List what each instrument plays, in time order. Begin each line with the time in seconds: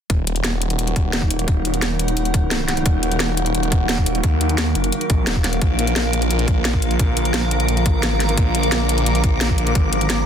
0.10 detuned saw bass D#1, synth drone D#3 F#3 A#3 F#4, ambient pad D#4, kick, closed hi-hat
0.24 ambient pad A#4, closed hi-hat
0.36 closed hi-hat
0.44 snare, closed hi-hat
0.62 closed hi-hat
0.70 closed hi-hat
0.79 closed hi-hat
0.87 closed hi-hat
0.95 ambient pad F#5, kick, closed hi-hat
1.13 snare, closed hi-hat
1.22 kick
1.31 closed hi-hat
1.39 closed hi-hat
1.48 detuned saw bass D#1, kick, closed hi-hat
1.65 closed hi-hat
1.74 closed hi-hat
1.82 snare, closed hi-hat
1.99 closed hi-hat
2.08 closed hi-hat
2.17 closed hi-hat
2.25 closed hi-hat
2.34 kick, closed hi-hat
2.51 snare, closed hi-hat
2.68 snare, closed hi-hat
2.77 closed hi-hat
2.86 detuned saw bass D#1, kick, closed hi-hat
3.03 closed hi-hat
3.12 closed hi-hat
3.20 snare, closed hi-hat
3.37 closed hi-hat
3.46 closed hi-hat
3.53 ambient pad F5, closed hi-hat
3.63 closed hi-hat
3.72 kick, closed hi-hat
3.89 snare, closed hi-hat
3.98 kick
4.06 closed hi-hat
4.15 closed hi-hat
4.24 detuned saw bass D#2, kick, closed hi-hat
4.41 closed hi-hat
4.49 closed hi-hat
4.58 snare, closed hi-hat
4.75 detuned saw bass F#1, closed hi-hat
4.84 closed hi-hat
4.92 closed hi-hat
5.01 closed hi-hat
5.10 detuned saw bass A#1, kick, closed hi-hat
5.27 detuned saw bass D#1, snare, closed hi-hat
5.36 kick
5.44 snare, closed hi-hat
5.53 closed hi-hat
5.61 detuned saw bass A#1, synth drone D3 F3 F4, kick, closed hi-hat
5.79 ambient pad A#5, closed hi-hat
5.87 closed hi-hat
5.96 snare, closed hi-hat
6.13 closed hi-hat
6.22 closed hi-hat
6.31 closed hi-hat
6.39 closed hi-hat
6.48 kick, closed hi-hat
6.65 snare, closed hi-hat
6.74 kick
6.82 ambient pad D6, closed hi-hat
6.91 closed hi-hat
6.99 detuned saw bass A#1, kick, closed hi-hat
7.17 closed hi-hat
7.25 closed hi-hat
7.34 snare, closed hi-hat
7.51 closed hi-hat
7.60 closed hi-hat
7.69 closed hi-hat
7.77 closed hi-hat
7.86 kick, closed hi-hat
7.95 detuned saw bass A1
8.03 snare, closed hi-hat
8.20 detuned saw bass G#1, snare, closed hi-hat
8.29 closed hi-hat
8.37 detuned saw bass A#1, kick, closed hi-hat
8.55 closed hi-hat
8.63 closed hi-hat
8.72 snare, closed hi-hat
8.89 closed hi-hat
8.98 closed hi-hat
9.06 closed hi-hat
9.15 closed hi-hat
9.24 kick, closed hi-hat
9.41 snare, closed hi-hat
9.49 kick
9.58 closed hi-hat
9.67 closed hi-hat
9.75 detuned saw bass G#1, kick, closed hi-hat
9.93 closed hi-hat
10.01 closed hi-hat
10.10 snare, closed hi-hat